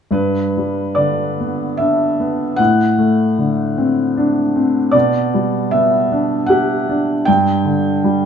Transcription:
0.11 2.53 G2 soft
0.11 0.97 B4 medium
0.57 1.23 G3 soft
0.95 1.63 D3 soft
0.95 1.78 D5 medium
1.41 2.05 B3 soft
1.77 2.43 D4 soft
1.77 2.58 E5 medium
2.20 2.59 B3 soft
2.56 4.90 A2 soft
2.56 4.93 F#5 medium
2.98 3.62 A3 soft
3.38 4.02 D3 soft
3.78 4.41 C4 soft
4.17 4.78 D4 soft
4.56 4.94 C4 soft
4.91 7.24 B2 soft
4.91 5.71 D5 medium
5.34 5.96 G3 soft
5.71 6.35 B3 soft
5.71 6.49 E5 medium
6.12 6.74 D4 soft
6.46 7.12 G4 soft
6.46 7.26 F#5 medium
6.89 7.28 D4 soft
7.25 8.26 G2 medium
7.25 8.26 G5 medium
7.65 8.26 D3 soft
8.04 8.26 G3 soft

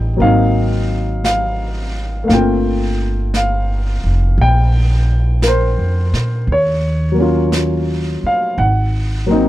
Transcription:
0.00 0.17 A1 medium
0.00 0.18 G3 soft
0.00 0.18 A3 soft
0.00 0.19 C4 soft
0.00 0.18 D#4 soft
0.00 0.20 D#5 medium
0.00 0.23 G5 medium
0.17 2.25 G#1 medium
0.17 2.27 F#3 soft
0.17 2.25 A#3 soft
0.17 2.29 C4 soft
0.17 brush sweep soft
0.22 2.30 D#4 soft
0.22 1.21 F5 medium
1.24 2.26 F5 medium
1.24 brush sweep soft
1.24 snare soft
1.24 hi-hat pedal soft
2.24 6.45 A3 soft
2.24 6.47 A#3 soft
2.28 3.99 G1 medium
2.28 6.48 C4 soft
2.28 2.31 F5 medium
2.28 brush sweep soft
2.28 snare soft
2.33 6.50 F4 soft
2.33 3.31 G5 medium
3.34 4.42 F5 medium
3.34 brush sweep soft
3.34 snare soft
3.34 hi-hat pedal soft
4.04 4.36 F1 soft
4.38 5.73 A#1 medium
4.38 5.36 G5 medium
4.38 brush sweep soft
5.42 5.45 A#4 soft
5.42 brush sweep soft
5.42 snare soft
5.42 hi-hat pedal soft
5.48 6.53 C5 medium
5.78 6.10 F2 soft
6.13 6.45 A#2 soft
6.13 snare soft
6.47 8.18 D#2 medium
6.47 brush sweep soft
6.52 8.30 C#5 medium
7.12 8.55 F#3 soft
7.12 8.56 A#3 soft
7.19 8.59 C#4 soft
7.19 8.60 F4 soft
7.52 brush sweep soft
7.52 snare soft
7.52 hi-hat pedal soft
8.23 8.57 F5 medium
8.23 muted upright bass stroke soft
8.57 9.49 G#1 medium
8.57 9.49 F#5 medium
8.57 brush sweep soft
9.26 9.49 F#3 soft
9.26 9.49 A#3 soft
9.30 9.49 C4 soft
9.30 9.49 D#4 medium

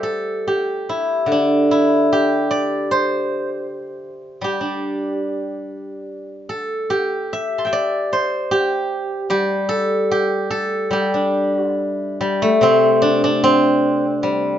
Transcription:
0.00 0.43 G3 medium
0.00 0.47 G4 medium
0.00 2.22 A4 medium
0.00 1.50 C5 soft
0.00 1.33 D5 soft
0.00 1.17 E5 soft
0.00 0.93 G5 soft
0.00 0.78 A5 soft
0.00 0.63 C6 soft
0.48 2.12 G4 medium
0.89 1.71 E4 medium
1.26 3.65 D3 soft
1.32 4.11 D4 medium
1.71 4.32 E4 medium
2.13 4.44 G4 medium
2.51 4.35 D5 medium
2.91 4.89 C5 medium
4.41 6.91 G3 soft
4.41 6.80 G4 medium
4.61 6.28 D4 soft
6.49 8.69 A4 medium
6.90 8.51 G4 medium
7.33 7.66 E5 medium
7.58 9.03 A5 soft
7.58 8.89 C6 soft
7.65 9.38 E5 soft
7.65 9.20 G5 soft
7.73 9.57 D5 medium
8.13 10.11 C5 medium
8.51 9.30 G4 medium
9.30 10.89 G3 soft
9.30 10.11 G4 medium
9.69 10.50 A4 medium
10.11 10.92 G4 medium
10.51 12.70 A4 medium
10.91 12.19 G3 medium
10.91 11.76 G4 medium
11.14 12.84 D4 soft
11.76 13.28 E4 medium
12.21 12.48 G3 medium
12.42 14.59 A3 medium
12.61 14.59 C3 medium
12.61 13.43 C4 medium
13.02 13.23 D4 medium
13.24 14.59 D4 medium
13.44 14.59 C4 medium
14.23 14.59 G3 medium

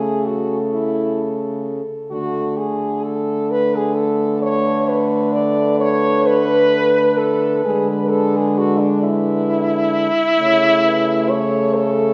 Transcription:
0.00 1.82 C#3 medium
0.00 1.86 A3 medium
0.00 0.27 G#4 loud
0.00 3.25 A4 loud
0.26 0.58 F#4 medium
0.72 1.19 E4 loud
2.11 7.61 D3 medium
2.11 7.61 A3 medium
2.11 2.60 F#4 loud
2.58 3.05 G#4 loud
3.04 3.53 A4 loud
3.48 8.97 B4 loud
3.48 3.77 B4 loud
3.76 3.96 G#4 loud
3.94 4.41 A4 loud
4.42 4.90 C#5 loud
4.89 5.34 B4 loud
5.33 5.79 D5 loud
5.80 6.28 C#5 loud
6.26 7.19 B4 loud
7.17 7.64 A4 loud
7.65 10.09 D3 medium
7.65 10.09 G#3 medium
7.65 7.91 G#4 loud
7.89 8.11 B4 loud
8.10 8.38 A4 loud
8.37 8.59 G#4 loud
8.58 8.81 F#4 loud
8.79 9.02 D4 loud
9.02 11.31 E4 loud
9.02 10.11 B4 loud
10.39 12.14 C#3 medium
10.39 12.14 A3 medium
10.39 10.88 C#5 medium
10.86 11.36 B4 medium
11.30 11.76 C#5 loud
11.35 11.78 A4 medium
11.75 12.14 A4 loud
11.75 12.14 C#5 loud

